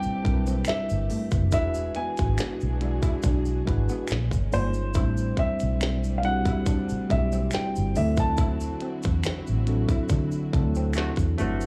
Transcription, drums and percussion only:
0.03 shaker
0.25 kick, closed hi-hat
0.47 shaker
0.65 finger snap, closed hi-hat, shaker
0.69 snare
0.89 shaker
1.10 open hi-hat, shaker
1.31 kick, shaker
1.52 kick, closed hi-hat, shaker
1.74 shaker
1.95 closed hi-hat
2.17 kick, closed hi-hat, shaker
2.38 finger snap, snare, closed hi-hat, shaker
2.61 shaker
2.81 closed hi-hat
3.02 kick, shaker
3.22 kick, closed hi-hat, shaker
3.45 shaker
3.67 kick, closed hi-hat
3.89 shaker
4.08 finger snap, closed hi-hat, shaker
4.12 snare
4.31 kick, shaker
4.52 open hi-hat, shaker
4.74 shaker
4.94 kick, closed hi-hat, shaker
5.17 shaker
5.37 kick, closed hi-hat
5.60 closed hi-hat, shaker
5.81 finger snap, snare, closed hi-hat, shaker
6.04 shaker
6.23 closed hi-hat
6.45 kick, shaker
6.66 kick, closed hi-hat, shaker
6.89 shaker
7.10 kick, closed hi-hat
7.32 shaker
7.51 finger snap, snare, closed hi-hat, shaker
7.76 shaker
7.95 open hi-hat, shaker
8.17 kick, shaker
8.37 kick, closed hi-hat, shaker
8.60 shaker
8.81 closed hi-hat
9.03 kick, closed hi-hat, shaker
9.24 finger snap, snare, closed hi-hat, shaker
9.47 shaker
9.67 closed hi-hat
9.89 kick, shaker
10.09 kick, closed hi-hat, shaker
10.32 shaker
10.53 kick, closed hi-hat
10.75 shaker
10.93 finger snap, closed hi-hat, shaker
10.98 snare
11.16 kick, closed hi-hat, shaker
11.38 closed hi-hat, shaker
11.61 shaker

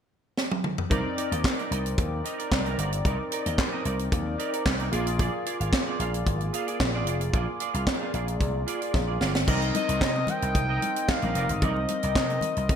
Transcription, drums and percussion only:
0.38 snare
0.52 high tom
0.64 mid tom
0.78 floor tom
0.91 kick, closed hi-hat
1.18 closed hi-hat
1.32 closed hi-hat
1.44 kick, snare, clap
1.59 closed hi-hat
1.72 closed hi-hat
1.86 closed hi-hat
1.98 kick, closed hi-hat
2.25 closed hi-hat
2.39 closed hi-hat
2.52 kick, snare, clap
2.66 closed hi-hat
2.79 closed hi-hat
2.92 closed hi-hat
3.05 kick, closed hi-hat
3.32 closed hi-hat
3.46 closed hi-hat
3.58 kick, snare, clap
3.85 closed hi-hat
3.99 closed hi-hat
4.12 kick, closed hi-hat
4.39 closed hi-hat
4.53 closed hi-hat
4.66 kick, snare, clap
4.79 closed hi-hat
4.93 closed hi-hat
5.07 closed hi-hat
5.19 kick, closed hi-hat
5.46 closed hi-hat
5.61 closed hi-hat
5.73 kick, snare, clap
6.00 closed hi-hat
6.14 closed hi-hat
6.27 kick, closed hi-hat
6.41 closed hi-hat
6.54 closed hi-hat
6.68 closed hi-hat
6.80 kick, snare, clap
7.07 closed hi-hat
7.21 closed hi-hat
7.33 kick, closed hi-hat
7.60 closed hi-hat
7.74 closed hi-hat
7.87 kick, snare, clap
8.14 closed hi-hat
8.28 closed hi-hat
8.40 kick, closed hi-hat
8.68 closed hi-hat
8.82 closed hi-hat
8.94 kick, snare
9.21 snare
9.35 snare
9.48 kick, crash, muted conga, low conga
9.62 closed hi-hat
9.74 closed hi-hat, high conga
9.89 closed hi-hat
10.01 kick, snare, clap, muted conga
10.16 muted conga
10.27 closed hi-hat, high conga, low conga
10.42 closed hi-hat
10.55 kick, closed hi-hat, muted conga
10.82 closed hi-hat, high conga
10.96 closed hi-hat
11.09 kick, snare, clap, muted conga
11.22 closed hi-hat, muted conga, high conga
11.35 closed hi-hat
11.49 closed hi-hat
11.62 kick, closed hi-hat, low conga
11.76 muted conga
11.88 closed hi-hat, high conga
12.03 closed hi-hat
12.15 kick, snare, clap, muted conga
12.30 closed hi-hat, muted conga
12.41 closed hi-hat, high conga, low conga
12.56 closed hi-hat
12.69 kick, closed hi-hat, muted conga

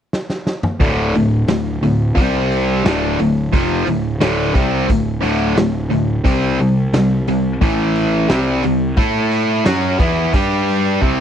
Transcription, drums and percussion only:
0.13 snare
0.30 snare
0.47 snare
0.63 mid tom
0.80 kick, open hi-hat
1.15 open hi-hat
1.48 snare, open hi-hat
1.83 open hi-hat
2.17 kick, open hi-hat
2.51 open hi-hat
2.85 snare, open hi-hat
3.19 open hi-hat
3.53 kick, open hi-hat
3.87 open hi-hat
4.21 snare, open hi-hat
4.55 kick, open hi-hat
4.89 kick, open hi-hat
5.23 open hi-hat
5.57 snare, open hi-hat
5.92 open hi-hat
6.25 kick, open hi-hat
6.60 open hi-hat
6.93 snare, open hi-hat
7.27 open hi-hat
7.62 kick, open hi-hat
7.96 open hi-hat
8.29 snare, open hi-hat
8.63 open hi-hat
8.97 kick, open hi-hat
9.31 open hi-hat
9.65 snare, open hi-hat
10.00 kick, open hi-hat
10.33 kick, open hi-hat
10.68 open hi-hat
11.02 kick

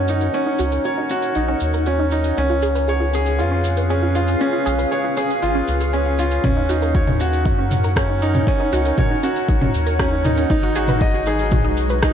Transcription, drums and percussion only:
0.08 shaker
0.21 shaker
0.33 shaker
0.59 shaker
0.72 shaker
0.84 shaker
1.10 shaker
1.22 shaker
1.35 shaker
1.60 shaker
1.73 shaker
1.86 shaker
2.11 shaker
2.24 shaker
2.37 shaker
2.62 shaker
2.75 shaker
2.88 shaker
3.14 shaker
3.26 shaker
3.39 shaker
3.64 shaker
3.77 shaker
3.90 shaker
4.15 shaker
4.28 shaker
4.40 shaker
4.66 shaker
4.79 shaker
4.92 shaker
5.17 shaker
5.30 shaker
5.43 shaker
5.68 shaker
5.81 shaker
5.93 shaker
6.19 shaker
6.31 shaker
6.44 kick, mid tom, shaker
6.69 shaker
6.82 shaker
6.95 kick, shaker
7.07 mid tom
7.20 shaker
7.33 shaker
7.46 kick, shaker
7.71 mid tom, shaker
7.84 shaker
7.96 kick, cross-stick, shaker
8.22 shaker
8.35 mid tom, shaker
8.47 kick, shaker
8.73 shaker
8.85 shaker
8.98 kick, mid tom, shaker
9.23 shaker
9.36 shaker
9.49 kick, shaker
9.61 mid tom
9.74 shaker
9.87 shaker
9.99 kick, cross-stick, shaker
10.25 mid tom, shaker
10.37 shaker
10.50 kick, shaker
10.75 shaker
10.88 mid tom, shaker
11.01 kick, shaker
11.26 shaker
11.39 shaker
11.51 kick, mid tom, shaker
11.77 shaker
11.90 shaker
12.03 kick, cross-stick, shaker

